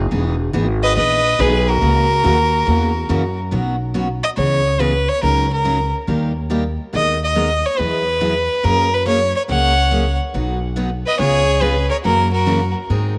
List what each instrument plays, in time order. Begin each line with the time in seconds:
0.11 upright bass E1, steel-string acoustic guitar E3 B3 D#4 G#4
0.53 upright bass G#1, steel-string acoustic guitar E3 B3 D#4 G#4
0.83 fiddle B4 D#5
0.96 upright bass A#1, steel-string acoustic guitar E3 B3 D#4 G#4, fiddle B4 D#5
1.39 upright bass B1, steel-string acoustic guitar E3 B3 D#4 G#4, fiddle G#4 B4
1.69 fiddle F#4 A#4
1.81 upright bass C#2, steel-string acoustic guitar C#3 E3 A#3 C#4 F#4
2.24 upright bass D#2, steel-string acoustic guitar C#3 E3 A#3 C#4 F#4
2.66 upright bass E2, steel-string acoustic guitar C#3 E3 A#3 C#4 F#4
3.09 upright bass F#2, steel-string acoustic guitar C#3 E3 A#3 C#4 F#4
3.51 upright bass B1, steel-string acoustic guitar B2 F#3 B3 C#4 F#4
3.94 steel-string acoustic guitar B2 F#3 B3 C#4 F#4
4.23 fiddle D#5
4.36 upright bass C#2, steel-string acoustic guitar C#3 E3 B3 C#4 G#4, fiddle C#5
4.79 steel-string acoustic guitar C#3 E3 B3 C#4 G#4, fiddle B4
5.09 fiddle C#5
5.22 upright bass C#2, steel-string acoustic guitar C#3 F#3 C#4 D#4 A#4, fiddle A#4
5.53 fiddle A#4
5.65 steel-string acoustic guitar C#3 F#3 C#4 D#4 A#4
6.07 upright bass D#2, steel-string acoustic guitar D#3 G3 A#3 D#4 G4
6.50 steel-string acoustic guitar D#3 G3 A#3 D#4 G4
6.93 upright bass D#2, steel-string acoustic guitar D#3 G#3 B3 D#4 A#4, fiddle D#5
7.24 fiddle D#5
7.35 steel-string acoustic guitar D#3 G#3 B3 D#4 A#4
7.66 fiddle C#5
7.78 upright bass E2, steel-string acoustic guitar E3 F#3 B3 E4 G#4, fiddle B4
8.21 steel-string acoustic guitar E3 F#3 B3 E4 G#4
8.63 upright bass F#2, steel-string acoustic guitar F#3 A#3 C#4 G#4, fiddle A#4
8.94 fiddle B4
9.06 steel-string acoustic guitar F#3 A#3 C#4 G#4, fiddle C#5
9.36 fiddle C#5
9.48 upright bass C#2, steel-string acoustic guitar F#3 A#3 C#4 G#4, fiddle C#5 F#5
9.91 steel-string acoustic guitar F#3 A#3 C#4 G#4
10.34 upright bass B1, steel-string acoustic guitar B2 F#3 B3 D#4 F#4
10.76 steel-string acoustic guitar B2 F#3 B3 D#4 F#4
11.06 fiddle B4 D#5
11.19 upright bass C#2, steel-string acoustic guitar C#3 G#3 B3 F4 G#4, fiddle G#4 C#5
11.61 steel-string acoustic guitar C#3 G#3 B3 F4 G#4, fiddle G#4 B4
11.89 fiddle A#4 C#5
12.03 upright bass F#2, steel-string acoustic guitar C#3 E3 A#3 C#4 F#4, fiddle F#4 A#4
12.32 fiddle F#4 A#4
12.46 steel-string acoustic guitar C#3 E3 A#3 C#4 F#4
12.90 upright bass G#2, steel-string acoustic guitar D#3 G#3 C4 D#4 G#4